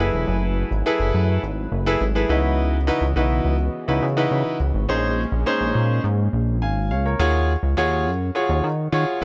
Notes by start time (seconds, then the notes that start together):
Already playing: G#5
0.00 F#1 F#3 A3 E4 G#4 A4 B4
0.14 E1
0.28 F#1
0.71 G#1
0.86 E4 G#4 A4 B4
1.00 F#1
1.14 F#2
1.43 G#1
1.72 F#1
1.86 E4 G#4 A4 B4
2.01 G#1
2.15 E4 G#4 A4 B4
2.29 C#2 C#3 E3 B3 D#4 E4 F#4 B4 D#5
2.87 D#4 E4 F#4 B4
3.01 C#2
3.16 B1 D#4 E4 F#4 B4
3.45 C#2
3.88 C#2 D#4 E4 F#4 B4
4.02 C#3
4.17 D#4 E4 F#4 B4
4.31 C#3
4.60 C#2
4.74 G#1
4.89 A#1 G#3 A#3 C#4 D#4 G#4 C5
5.32 A#1
5.46 C#4 D#4 G#4 C5
5.61 A#1
5.75 A#2
6.04 G#2
6.33 A#1
6.62 G#1 F5 G#5
6.91 C#2 C#5 F5
7.06 A#4 C#5
7.19 D#2 F4 F#4 G#4 C#5
7.63 C#2
7.77 D#2 F4 F#4 G#4 C#5
8.06 F#2
8.35 F4 F#4 G#4 C#5
8.49 D#2
8.64 D#3
8.92 D#3 F4 F#4 G#4 C#5